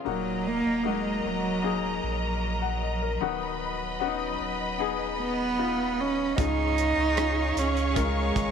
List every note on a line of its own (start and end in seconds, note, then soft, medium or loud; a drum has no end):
0.05 0.62 D#1 loud
0.05 1.20 A#2 medium
0.05 6.34 F#3 medium
0.05 0.49 F#3 medium
0.05 0.81 A#3 medium
0.05 0.81 D#4 medium
0.05 0.81 F#4 medium
0.05 3.19 A#4 medium
0.05 3.19 D#5 medium
0.05 3.20 A#5 medium
0.47 0.89 A#3 medium
0.66 1.21 D#1 medium
0.83 1.28 G#3 medium
0.83 1.59 A#3 medium
0.83 1.60 D#4 medium
0.83 1.60 F#4 medium
1.25 2.00 D#1 medium
1.25 2.05 F#3 medium
1.62 2.38 A#3 medium
1.62 2.39 D#4 medium
1.62 2.39 G#4 medium
2.03 3.18 A#1 medium
2.62 2.81 F#5 medium
2.82 3.01 D#5 medium
3.02 3.40 A#4 medium
3.21 4.36 D#1 loud
3.21 4.36 D#3 medium
3.21 3.96 B3 medium
3.21 3.97 D#4 medium
3.21 3.97 F#4 medium
3.21 6.34 B4 medium
3.21 6.35 D#5 medium
3.21 6.35 B5 medium
3.99 4.75 B3 medium
3.99 4.07 C#4 medium
3.99 4.76 F#4 medium
4.07 4.78 D#4 medium
4.40 6.34 D#1 medium
4.78 5.54 B3 medium
4.78 5.55 D#4 medium
4.78 5.55 G#4 medium
5.19 6.02 B3 medium
5.57 6.33 B3 medium
5.57 6.34 D#4 medium
5.57 6.34 F4 medium
6.00 6.39 C#4 medium
6.36 6.93 C#2 loud
6.36 7.52 G#2 medium
6.36 7.12 C#4 medium
6.36 7.60 D#4 loud
6.36 7.13 F4 medium
6.36 8.51 G#4 medium
6.36 7.13 G#4 medium
6.36 8.51 C#5 medium
6.36 8.51 F5 medium
6.36 8.51 C#6 medium
6.36 kick medium
6.36 closed hi-hat medium
6.78 closed hi-hat medium
6.97 7.52 C#2 medium
7.16 7.91 C#4 medium
7.16 7.92 F4 medium
7.16 7.92 G#4 medium
7.16 cross-stick loud
7.16 closed hi-hat medium
7.56 8.31 C#2 medium
7.56 7.99 C#4 medium
7.56 closed hi-hat medium
7.77 closed hi-hat soft
7.95 8.51 G#3 medium
7.95 8.51 C#4 medium
7.95 8.51 F4 medium
7.95 8.51 A#4 medium
7.95 kick medium
7.95 closed hi-hat medium
8.36 8.51 G#1 medium
8.36 kick medium
8.36 closed hi-hat medium